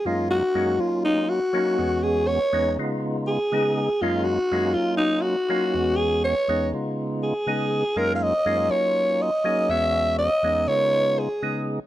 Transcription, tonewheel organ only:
X:1
M:4/4
L:1/8
Q:"Swing 16ths" 1/4=121
K:Dbmix
V:1 name="Tonewheel organ"
[G,,A,B,DEF] z [G,,A,B,DEG] [G,B,DEF]2 z [G,B,DEG] [=E,,^G,=B,^C_G]- | [=E,,^G,=B,^C_G] z [E,,^G,B,C_E] [D,A,_CEF]2 z [D,A,CEA] z | [G,,A,B,DEF] z [G,,A,B,DEF] [G,B,DEF]2 z [G,B,DEF] [=E,,^G,=B,^C_G]- | [=E,,^G,=B,^C_G] z [E,,^G,B,C_E] [D,A,_CEF]2 z [D,A,CEA] z |
[G,,A,B,DEF] z [G,,A,B,DEF] [G,B,DEF]2 z [G,B,DEA] [=E,,^G,=B,^C_G]- | [=E,,^G,=B,^C_G] z [E,,^G,B,C_E] [D,A,_CEF]2 z [D,A,CEA] z |]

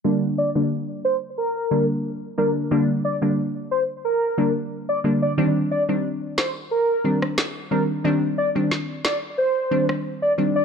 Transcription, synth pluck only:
X:1
M:4/4
L:1/16
Q:1/4=90
K:Gm
V:1 name="Synth pluck" clef=bass
[D,G,B,D] z2 [D,G,B,D] z6 [D,G,B,D] z3 [D,G,B,D] z | [D,G,B,D] z2 [D,G,B,D] z6 [D,G,B,D] z3 [D,G,B,D] z | [E,G,CD] z2 [E,G,CD] z6 [E,G,CD] z3 [E,G,CD] z | [E,G,CD] z2 [E,G,CD] z6 [E,G,CD] z3 [E,G,CD] z |]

